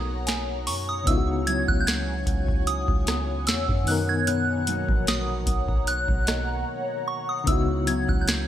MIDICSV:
0, 0, Header, 1, 8, 480
1, 0, Start_track
1, 0, Tempo, 800000
1, 643, Time_signature, 4, 2, 24, 8
1, 5085, End_track
2, 0, Start_track
2, 0, Title_t, "Synth bell"
2, 0, Program_c, 0, 98
2, 0, Note_on_c, 0, 87, 99
2, 402, Note_on_c, 0, 85, 88
2, 433, Note_off_c, 0, 87, 0
2, 533, Note_on_c, 0, 87, 93
2, 536, Note_off_c, 0, 85, 0
2, 643, Note_on_c, 0, 88, 94
2, 646, Note_off_c, 0, 87, 0
2, 882, Note_on_c, 0, 92, 104
2, 890, Note_off_c, 0, 88, 0
2, 940, Note_off_c, 0, 92, 0
2, 1010, Note_on_c, 0, 90, 98
2, 1083, Note_on_c, 0, 91, 77
2, 1085, Note_off_c, 0, 90, 0
2, 1121, Note_on_c, 0, 92, 94
2, 1122, Note_off_c, 0, 91, 0
2, 1603, Note_on_c, 0, 87, 96
2, 1616, Note_off_c, 0, 92, 0
2, 2083, Note_on_c, 0, 88, 93
2, 2097, Note_off_c, 0, 87, 0
2, 2326, Note_on_c, 0, 90, 97
2, 2330, Note_off_c, 0, 88, 0
2, 2454, Note_on_c, 0, 92, 107
2, 2458, Note_off_c, 0, 90, 0
2, 2566, Note_on_c, 0, 90, 101
2, 2567, Note_off_c, 0, 92, 0
2, 3021, Note_off_c, 0, 90, 0
2, 3049, Note_on_c, 0, 87, 85
2, 3526, Note_on_c, 0, 90, 93
2, 3540, Note_off_c, 0, 87, 0
2, 4246, Note_on_c, 0, 85, 83
2, 4266, Note_off_c, 0, 90, 0
2, 4374, Note_on_c, 0, 87, 88
2, 4378, Note_off_c, 0, 85, 0
2, 4423, Note_off_c, 0, 87, 0
2, 4485, Note_on_c, 0, 88, 95
2, 4707, Note_off_c, 0, 88, 0
2, 4724, Note_on_c, 0, 92, 99
2, 4854, Note_on_c, 0, 90, 92
2, 4857, Note_off_c, 0, 92, 0
2, 4927, Note_off_c, 0, 90, 0
2, 4928, Note_on_c, 0, 91, 72
2, 4965, Note_off_c, 0, 91, 0
2, 4966, Note_on_c, 0, 92, 98
2, 5085, Note_off_c, 0, 92, 0
2, 5085, End_track
3, 0, Start_track
3, 0, Title_t, "Ambient pad"
3, 0, Program_c, 1, 92
3, 0, Note_on_c, 1, 73, 83
3, 0, Note_on_c, 1, 78, 77
3, 0, Note_on_c, 1, 82, 72
3, 618, Note_off_c, 1, 78, 0
3, 630, Note_off_c, 1, 82, 0
3, 642, Note_on_c, 1, 78, 76
3, 642, Note_on_c, 1, 80, 77
3, 2306, Note_off_c, 1, 80, 0
3, 2317, Note_on_c, 1, 82, 80
3, 3271, Note_off_c, 1, 82, 0
3, 3281, Note_on_c, 1, 82, 71
3, 4470, Note_off_c, 1, 82, 0
3, 4480, Note_on_c, 1, 80, 70
3, 5085, Note_off_c, 1, 73, 0
3, 5085, Note_off_c, 1, 78, 0
3, 5085, Note_off_c, 1, 80, 0
3, 5085, End_track
4, 0, Start_track
4, 0, Title_t, "Celesta"
4, 0, Program_c, 2, 8
4, 160, Note_on_c, 2, 80, 79
4, 858, Note_off_c, 2, 80, 0
4, 3762, Note_on_c, 2, 75, 62
4, 4633, Note_off_c, 2, 75, 0
4, 5085, End_track
5, 0, Start_track
5, 0, Title_t, "FM electric piano"
5, 0, Program_c, 3, 5
5, 0, Control_c, 3, 64, 127
5, 0, Note_on_c, 3, 47, 66
5, 0, Note_on_c, 3, 59, 61
5, 0, Note_on_c, 3, 63, 66
5, 0, Note_on_c, 3, 70, 78
5, 370, Note_off_c, 3, 47, 0
5, 377, Note_off_c, 3, 59, 0
5, 391, Note_off_c, 3, 70, 0
5, 404, Note_off_c, 3, 63, 0
5, 622, Note_on_c, 3, 49, 65
5, 633, Note_on_c, 3, 59, 62
5, 644, Note_on_c, 3, 63, 64
5, 650, Control_c, 3, 64, 0
5, 654, Note_on_c, 3, 64, 60
5, 665, Note_on_c, 3, 65, 57
5, 696, Note_off_c, 3, 65, 0
5, 705, Note_on_c, 3, 66, 70
5, 746, Control_c, 3, 64, 127
5, 2288, Note_off_c, 3, 49, 0
5, 2294, Note_off_c, 3, 59, 0
5, 2299, Note_off_c, 3, 63, 0
5, 2304, Note_on_c, 3, 51, 67
5, 2305, Note_off_c, 3, 64, 0
5, 2319, Note_on_c, 3, 59, 61
5, 2330, Note_off_c, 3, 66, 0
5, 2332, Control_c, 3, 64, 0
5, 2333, Note_on_c, 3, 63, 65
5, 2348, Note_on_c, 3, 70, 78
5, 2428, Control_c, 3, 64, 127
5, 4210, Note_off_c, 3, 51, 0
5, 4217, Note_off_c, 3, 59, 0
5, 4224, Note_off_c, 3, 63, 0
5, 4232, Note_off_c, 3, 70, 0
5, 4465, Note_on_c, 3, 49, 68
5, 4476, Note_on_c, 3, 59, 59
5, 4487, Note_on_c, 3, 63, 57
5, 4491, Control_c, 3, 64, 0
5, 4498, Note_on_c, 3, 64, 61
5, 4508, Note_on_c, 3, 66, 75
5, 4613, Control_c, 3, 64, 127
5, 5085, Note_off_c, 3, 49, 0
5, 5085, Note_off_c, 3, 59, 0
5, 5085, Note_off_c, 3, 63, 0
5, 5085, Note_off_c, 3, 64, 0
5, 5085, Note_off_c, 3, 66, 0
5, 5085, End_track
6, 0, Start_track
6, 0, Title_t, "Nylon-string guitar"
6, 0, Program_c, 4, 24
6, 0, Note_on_c, 4, 47, 89
6, 0, Note_on_c, 4, 58, 59
6, 0, Note_on_c, 4, 63, 60
6, 0, Note_on_c, 4, 66, 64
6, 641, Note_on_c, 4, 49, 87
6, 642, Note_off_c, 4, 47, 0
6, 642, Note_off_c, 4, 66, 0
6, 645, Note_on_c, 4, 64, 76
6, 694, Note_off_c, 4, 58, 0
6, 881, Note_off_c, 4, 64, 0
6, 881, Note_on_c, 4, 54, 59
6, 882, Note_off_c, 4, 63, 0
6, 885, Note_on_c, 4, 59, 59
6, 888, Note_on_c, 4, 64, 63
6, 1838, Note_off_c, 4, 59, 0
6, 1841, Note_on_c, 4, 59, 66
6, 2320, Note_off_c, 4, 49, 0
6, 2323, Note_on_c, 4, 47, 86
6, 2378, Note_off_c, 4, 64, 0
6, 2555, Note_off_c, 4, 47, 0
6, 2562, Note_on_c, 4, 47, 81
6, 2565, Note_on_c, 4, 63, 73
6, 2800, Note_off_c, 4, 54, 0
6, 2802, Note_on_c, 4, 54, 57
6, 2804, Note_off_c, 4, 59, 0
6, 2806, Note_on_c, 4, 58, 58
6, 2807, Note_off_c, 4, 63, 0
6, 2810, Note_on_c, 4, 63, 66
6, 3756, Note_off_c, 4, 58, 0
6, 3763, Note_on_c, 4, 58, 60
6, 4481, Note_off_c, 4, 47, 0
6, 4484, Note_off_c, 4, 63, 0
6, 4484, Note_on_c, 4, 49, 83
6, 4487, Note_on_c, 4, 64, 68
6, 4535, Note_off_c, 4, 58, 0
6, 4719, Note_off_c, 4, 54, 0
6, 4722, Note_off_c, 4, 64, 0
6, 4722, Note_on_c, 4, 54, 61
6, 4725, Note_on_c, 4, 59, 61
6, 4729, Note_on_c, 4, 64, 68
6, 5085, Note_off_c, 4, 49, 0
6, 5085, Note_off_c, 4, 54, 0
6, 5085, Note_off_c, 4, 59, 0
6, 5085, Note_off_c, 4, 64, 0
6, 5085, End_track
7, 0, Start_track
7, 0, Title_t, "808-style bass"
7, 0, Program_c, 5, 38
7, 0, Note_on_c, 5, 35, 103
7, 404, Note_on_c, 5, 42, 103
7, 413, Note_off_c, 5, 35, 0
7, 632, Note_off_c, 5, 42, 0
7, 643, Note_on_c, 5, 37, 110
7, 998, Note_off_c, 5, 37, 0
7, 1013, Note_on_c, 5, 37, 102
7, 1349, Note_off_c, 5, 37, 0
7, 1361, Note_on_c, 5, 37, 104
7, 1717, Note_off_c, 5, 37, 0
7, 1730, Note_on_c, 5, 37, 107
7, 2085, Note_on_c, 5, 40, 97
7, 2094, Note_off_c, 5, 37, 0
7, 2207, Note_off_c, 5, 40, 0
7, 2214, Note_on_c, 5, 42, 99
7, 2909, Note_off_c, 5, 42, 0
7, 2933, Note_on_c, 5, 34, 104
7, 3269, Note_off_c, 5, 34, 0
7, 3281, Note_on_c, 5, 35, 105
7, 3637, Note_off_c, 5, 35, 0
7, 3652, Note_on_c, 5, 35, 99
7, 3989, Note_off_c, 5, 35, 0
7, 4485, Note_on_c, 5, 37, 115
7, 4839, Note_off_c, 5, 37, 0
7, 4854, Note_on_c, 5, 37, 109
7, 5085, Note_off_c, 5, 37, 0
7, 5085, End_track
8, 0, Start_track
8, 0, Title_t, "Drums"
8, 161, Note_on_c, 9, 42, 67
8, 171, Note_on_c, 9, 38, 118
8, 221, Note_off_c, 9, 42, 0
8, 231, Note_off_c, 9, 38, 0
8, 402, Note_on_c, 9, 46, 71
8, 462, Note_off_c, 9, 46, 0
8, 642, Note_on_c, 9, 36, 123
8, 642, Note_on_c, 9, 42, 80
8, 702, Note_off_c, 9, 36, 0
8, 702, Note_off_c, 9, 42, 0
8, 882, Note_on_c, 9, 42, 76
8, 942, Note_off_c, 9, 42, 0
8, 1011, Note_on_c, 9, 36, 92
8, 1071, Note_off_c, 9, 36, 0
8, 1123, Note_on_c, 9, 42, 75
8, 1129, Note_on_c, 9, 38, 113
8, 1183, Note_off_c, 9, 42, 0
8, 1189, Note_off_c, 9, 38, 0
8, 1359, Note_on_c, 9, 36, 86
8, 1361, Note_on_c, 9, 42, 63
8, 1419, Note_off_c, 9, 36, 0
8, 1421, Note_off_c, 9, 42, 0
8, 1491, Note_on_c, 9, 36, 98
8, 1551, Note_off_c, 9, 36, 0
8, 1602, Note_on_c, 9, 42, 74
8, 1662, Note_off_c, 9, 42, 0
8, 1730, Note_on_c, 9, 36, 103
8, 1790, Note_off_c, 9, 36, 0
8, 1842, Note_on_c, 9, 42, 80
8, 1849, Note_on_c, 9, 37, 97
8, 1849, Note_on_c, 9, 38, 72
8, 1902, Note_off_c, 9, 42, 0
8, 1909, Note_off_c, 9, 37, 0
8, 1909, Note_off_c, 9, 38, 0
8, 2081, Note_on_c, 9, 42, 66
8, 2091, Note_on_c, 9, 38, 118
8, 2141, Note_off_c, 9, 42, 0
8, 2151, Note_off_c, 9, 38, 0
8, 2212, Note_on_c, 9, 36, 87
8, 2272, Note_off_c, 9, 36, 0
8, 2322, Note_on_c, 9, 46, 73
8, 2382, Note_off_c, 9, 46, 0
8, 2563, Note_on_c, 9, 42, 84
8, 2623, Note_off_c, 9, 42, 0
8, 2803, Note_on_c, 9, 42, 72
8, 2863, Note_off_c, 9, 42, 0
8, 2932, Note_on_c, 9, 36, 91
8, 2992, Note_off_c, 9, 36, 0
8, 3044, Note_on_c, 9, 42, 72
8, 3050, Note_on_c, 9, 38, 110
8, 3104, Note_off_c, 9, 42, 0
8, 3110, Note_off_c, 9, 38, 0
8, 3279, Note_on_c, 9, 36, 84
8, 3281, Note_on_c, 9, 42, 64
8, 3339, Note_off_c, 9, 36, 0
8, 3341, Note_off_c, 9, 42, 0
8, 3411, Note_on_c, 9, 36, 98
8, 3471, Note_off_c, 9, 36, 0
8, 3523, Note_on_c, 9, 42, 73
8, 3583, Note_off_c, 9, 42, 0
8, 3650, Note_on_c, 9, 36, 94
8, 3710, Note_off_c, 9, 36, 0
8, 3763, Note_on_c, 9, 42, 81
8, 3769, Note_on_c, 9, 37, 99
8, 3769, Note_on_c, 9, 38, 74
8, 3823, Note_off_c, 9, 42, 0
8, 3829, Note_off_c, 9, 37, 0
8, 3829, Note_off_c, 9, 38, 0
8, 4483, Note_on_c, 9, 36, 115
8, 4483, Note_on_c, 9, 42, 87
8, 4543, Note_off_c, 9, 36, 0
8, 4543, Note_off_c, 9, 42, 0
8, 4723, Note_on_c, 9, 42, 73
8, 4783, Note_off_c, 9, 42, 0
8, 4852, Note_on_c, 9, 36, 89
8, 4912, Note_off_c, 9, 36, 0
8, 4965, Note_on_c, 9, 42, 72
8, 4971, Note_on_c, 9, 38, 118
8, 5025, Note_off_c, 9, 42, 0
8, 5031, Note_off_c, 9, 38, 0
8, 5085, End_track
0, 0, End_of_file